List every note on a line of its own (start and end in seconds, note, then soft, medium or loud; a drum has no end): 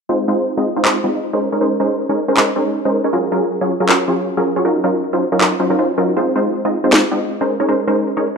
0.09 0.26 G#3 medium
0.09 0.26 C4 medium
0.09 0.26 D#4 medium
0.09 0.26 F4 medium
0.09 0.26 C5 loud
0.28 0.55 G#3 medium
0.28 0.55 C4 medium
0.28 0.55 D#4 medium
0.28 0.55 F4 medium
0.28 0.55 C5 loud
0.57 0.69 G#3 medium
0.57 0.69 C4 medium
0.57 0.69 D#4 medium
0.57 0.69 F4 medium
0.57 0.69 D#5 medium
0.76 0.83 G#3 medium
0.76 0.83 C4 medium
0.76 0.83 D#4 medium
0.76 0.83 F4 medium
0.76 0.83 C5 medium
0.85 0.97 G#3 medium
0.85 0.97 C4 medium
0.85 0.97 D#4 medium
0.85 0.97 F4 medium
0.85 0.97 C5 loud
0.85 clap medium
1.04 1.31 G#3 medium
1.04 1.31 C4 medium
1.04 1.31 D#4 medium
1.04 1.31 F4 medium
1.04 1.31 D#5 medium
1.33 1.50 G#3 medium
1.33 1.50 C#4 medium
1.33 1.50 D#4 medium
1.33 1.50 A#4 medium
1.33 1.50 C5 medium
1.52 1.59 G#3 medium
1.52 1.59 C#4 medium
1.52 1.59 D#4 medium
1.52 1.59 A#4 medium
1.52 1.59 C#5 medium
1.61 1.78 G#3 medium
1.61 1.78 C#4 medium
1.61 1.78 D#4 medium
1.61 1.78 A#4 medium
1.61 1.78 C5 medium
1.80 2.07 G#3 loud
1.80 2.07 C#4 medium
1.80 2.07 D#4 medium
1.80 2.07 A#4 medium
1.80 2.07 C5 loud
2.09 2.20 G#3 medium
2.09 2.20 C#4 medium
2.09 2.20 D#4 medium
2.09 2.20 A#4 medium
2.09 2.20 C#5 medium
2.28 2.35 G#3 medium
2.28 2.35 C#4 medium
2.28 2.35 D#4 medium
2.28 2.35 A#4 medium
2.28 2.35 C5 medium
2.37 2.49 G#3 medium
2.37 2.49 C#4 medium
2.37 2.49 D#4 medium
2.37 2.49 A#4 medium
2.37 2.49 C5 loud
2.37 clap medium
2.56 2.83 G#3 medium
2.56 2.83 C#4 medium
2.56 2.83 D#4 medium
2.56 2.83 A#4 medium
2.56 2.83 C#5 medium
2.85 3.02 G#3 medium
2.85 3.02 C#4 medium
2.85 3.02 D#4 medium
2.85 3.02 A#4 medium
2.85 3.02 C5 medium
3.04 3.11 G#3 medium
3.04 3.11 C#4 medium
3.04 3.11 D#4 medium
3.04 3.11 A#4 medium
3.04 3.11 C#5 medium
3.13 3.30 F#3 medium
3.13 3.30 C#4 medium
3.13 3.30 F4 medium
3.13 3.30 G#4 medium
3.13 3.30 A#4 medium
3.32 3.59 F#3 loud
3.32 3.59 C#4 medium
3.32 3.59 F4 medium
3.32 3.59 G#4 medium
3.32 3.59 A#4 loud
3.61 3.72 F#3 medium
3.61 3.72 C#4 medium
3.61 3.72 F4 medium
3.61 3.72 G#4 medium
3.61 3.72 C#5 medium
3.80 3.87 F#3 medium
3.80 3.87 C#4 medium
3.80 3.87 F4 medium
3.80 3.87 G#4 medium
3.80 3.87 A#4 medium
3.89 4.01 F#3 medium
3.89 4.01 C#4 medium
3.89 4.01 F4 medium
3.89 4.01 G#4 medium
3.89 4.01 A#4 loud
3.89 clap medium
4.08 4.35 F#3 medium
4.08 4.35 C#4 medium
4.08 4.35 F4 medium
4.08 4.35 G#4 medium
4.08 4.35 C#5 medium
4.37 4.54 F#3 medium
4.37 4.54 C#4 medium
4.37 4.54 F4 medium
4.37 4.54 G#4 medium
4.37 4.54 A#4 medium
4.56 4.63 F#3 medium
4.56 4.63 C#4 medium
4.56 4.63 F4 medium
4.56 4.63 G#4 medium
4.56 4.63 C#5 medium
4.65 4.82 F#3 medium
4.65 4.82 C#4 medium
4.65 4.82 D#4 medium
4.65 4.82 F4 medium
4.65 4.82 A#4 loud
4.84 5.11 F#3 medium
4.84 5.11 C#4 medium
4.84 5.11 D#4 medium
4.84 5.11 F4 medium
4.84 5.11 A#4 loud
5.13 5.24 F#3 medium
5.13 5.24 C#4 medium
5.13 5.24 D#4 medium
5.13 5.24 F4 medium
5.13 5.24 C5 medium
5.32 5.39 F#3 medium
5.32 5.39 C#4 medium
5.32 5.39 D#4 medium
5.32 5.39 F4 medium
5.32 5.39 A#4 medium
5.41 5.53 F#3 medium
5.41 5.53 C#4 medium
5.41 5.53 D#4 medium
5.41 5.53 F4 medium
5.41 5.53 A#4 loud
5.41 clap medium
5.60 5.69 F#3 medium
5.60 5.69 C#4 medium
5.60 5.69 D#4 medium
5.60 5.69 F4 medium
5.60 5.69 C5 medium
5.70 5.77 F#3 medium
5.70 5.77 C#4 medium
5.70 5.77 D#4 medium
5.70 5.77 F4 medium
5.70 5.77 A#4 medium
5.79 5.91 F#3 medium
5.79 5.91 C#4 medium
5.79 5.91 D#4 medium
5.79 5.91 F4 medium
5.79 5.91 C5 medium
5.98 6.15 F#3 medium
5.98 6.15 C#4 medium
5.98 6.15 D#4 medium
5.98 6.15 F4 medium
5.98 6.15 A#4 loud
6.17 6.34 G#3 medium
6.17 6.34 C4 medium
6.17 6.34 D#4 medium
6.17 6.34 F4 medium
6.17 6.34 C5 medium
6.36 6.63 G#3 loud
6.36 6.63 C4 medium
6.36 6.63 D#4 medium
6.36 6.63 F4 medium
6.36 6.63 C5 loud
6.65 6.76 G#3 medium
6.65 6.76 C4 medium
6.65 6.76 D#4 medium
6.65 6.76 F4 medium
6.65 6.76 D#5 medium
6.84 6.91 G#3 medium
6.84 6.91 C4 medium
6.84 6.91 D#4 medium
6.84 6.91 F4 medium
6.84 6.91 C5 medium
6.93 7.05 G#3 medium
6.93 7.05 C4 medium
6.93 7.05 D#4 medium
6.93 7.05 F4 medium
6.93 7.05 C5 loud
6.93 snare loud
6.93 clap medium
7.12 7.38 G#3 medium
7.12 7.38 C4 medium
7.12 7.38 D#4 medium
7.12 7.38 F4 medium
7.12 7.38 D#5 medium
7.41 7.57 G#3 medium
7.41 7.57 C#4 medium
7.41 7.57 D#4 medium
7.41 7.57 A#4 medium
7.41 7.57 C5 medium
7.60 7.67 G#3 medium
7.60 7.67 C#4 medium
7.60 7.67 D#4 medium
7.60 7.67 A#4 medium
7.60 7.67 C#5 medium
7.68 7.85 G#3 medium
7.68 7.85 C#4 medium
7.68 7.85 D#4 medium
7.68 7.85 A#4 medium
7.68 7.85 C5 loud
7.88 8.14 G#3 loud
7.88 8.14 C#4 medium
7.88 8.14 D#4 medium
7.88 8.14 A#4 medium
7.88 8.14 C5 loud
8.17 8.28 G#3 medium
8.17 8.28 C#4 medium
8.17 8.28 D#4 medium
8.17 8.28 A#4 medium
8.17 8.28 C#5 medium